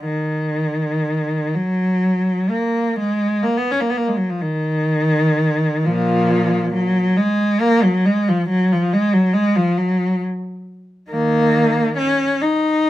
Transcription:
0.05 D#3
1.55 F#3
2.50 A#3
2.99 G#3
3.43 A#3
3.57 B3
3.71 C#4
3.81 A#3
3.90 B3
3.97 A#3
4.08 G#3
4.17 F#3
4.30 F3
4.41 D#3
5.86 A#2 F3
6.73 F#3
7.17 G#3
7.61 A#3
7.83 F#3
8.05 G#3
8.29 F3
8.49 F#3
8.72 F3
8.93 G#3
9.14 F#3
9.33 G#3
9.56 F3
9.78 F#3
11.10 D#3 A#3
11.97 C#4
12.42 D#4

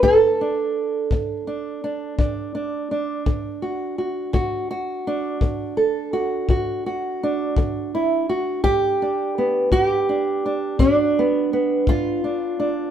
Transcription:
Already playing: D4
0.03 D3 A4, kick
0.41 D4
1.11 D3, kick
1.47 D4
1.84 D4
2.18 D3 D4, kick
2.31 G4
2.55 D4
2.91 D4
3.26 D3, kick
3.62 F#4
3.98 F#4
4.33 D3 F#4, kick
4.71 F#4
5.07 D4
5.41 D3, kick
5.77 A4
6.13 F#4
6.49 D3 F#4, kick
6.86 F#4
7.23 D4
7.56 D3, kick
7.95 E4
8.29 F#4
8.64 G2 G4, kick
9.02 D4
9.38 B3
9.72 G2 F#4, kick
9.83 G4
10.09 D4
10.46 D4
10.79 G2 D4, kick
10.91 F#4
11.19 B3
11.53 B3
11.87 G2 F4, kick
12.24 D4
12.60 D4

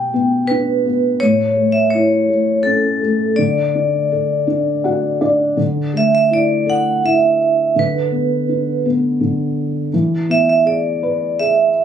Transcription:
Already playing: B2 B3 G4 G5
0.13 B3
0.47 D4 B4
0.85 B3
1.20 A2 C#5
1.56 A3
1.72 E5
1.90 E4 C#5
2.29 A3
2.63 C#4 A4
3.02 A3
3.36 D3 D5
3.75 D4
4.11 A4
4.47 D4
4.84 F#4 F#5
5.21 D4 D5
5.57 D3
5.93 A3 E5
6.15 E5
6.30 E4 D5
6.66 A4
6.70 F#5
7.03 E4 E5
7.75 D3 B4
8.12 B3
8.49 D4
8.85 B3
9.20 D3
9.93 E3
10.29 B3 E5
10.49 E5
10.65 G#4 D5
11.03 B4
11.39 G#4 E5

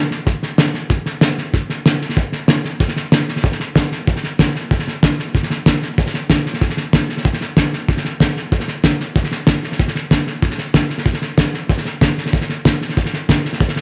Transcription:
0.11 snare
0.26 kick, snare
0.43 snare
0.58 snare, hi-hat pedal
0.74 snare
0.90 kick, snare
1.06 snare
1.21 snare, hi-hat pedal
1.38 snare
1.53 kick, snare
1.70 snare
1.86 snare, hi-hat pedal
2.01 snare
2.09 snare
2.17 kick, snare
2.32 snare
2.48 snare, hi-hat pedal
2.65 snare
2.80 kick, snare
2.88 snare
2.96 snare
3.12 snare, hi-hat pedal
3.29 snare
3.36 snare
3.44 kick, snare
3.52 snare
3.60 snare
3.76 kick, snare, hi-hat pedal
3.92 snare
4.07 kick, snare
4.16 snare
4.24 snare
4.39 kick, snare, hi-hat pedal
4.55 snare
4.71 kick, snare
4.79 snare
4.88 snare
5.03 kick, snare, hi-hat pedal
5.19 snare
5.35 kick, snare
5.43 snare
5.50 snare
5.66 kick, snare, hi-hat pedal
5.82 snare
5.98 kick, snare
6.06 snare
6.14 snare
6.30 kick, snare, hi-hat pedal
6.46 snare
6.54 snare
6.61 kick, snare
6.70 snare
6.77 snare
6.93 kick, snare, hi-hat pedal
7.09 snare
7.17 snare
7.25 kick, snare
7.33 snare
7.41 snare
7.57 kick, snare, hi-hat pedal
7.73 snare
7.88 kick, snare
7.97 snare
8.05 snare
8.20 kick, snare, hi-hat pedal
8.36 snare
8.52 kick, snare
8.60 snare
8.68 snare
8.84 kick, snare, hi-hat pedal
9.00 snare
9.16 kick, snare
9.24 snare
9.31 snare
9.47 kick, snare, hi-hat pedal
9.63 snare
9.72 snare
9.79 kick, snare
9.88 snare
9.95 snare
10.11 kick, snare, hi-hat pedal
10.27 snare
10.42 kick, snare
10.51 snare
10.58 snare
10.74 kick, snare, hi-hat pedal
10.90 snare
10.98 snare
11.06 kick, snare
11.13 snare
11.22 snare
11.38 kick, snare, hi-hat pedal
11.54 snare
11.69 kick, snare
11.78 snare
11.85 snare
12.01 kick, snare, hi-hat pedal
12.18 snare
12.26 snare
12.33 kick, snare
12.41 snare
12.49 snare
12.65 kick, snare, hi-hat pedal
12.81 snare
12.89 snare
12.97 kick, snare
13.05 snare
13.13 snare
13.29 kick, snare, hi-hat pedal
13.45 snare
13.53 snare
13.60 kick, snare
13.69 snare
13.76 snare

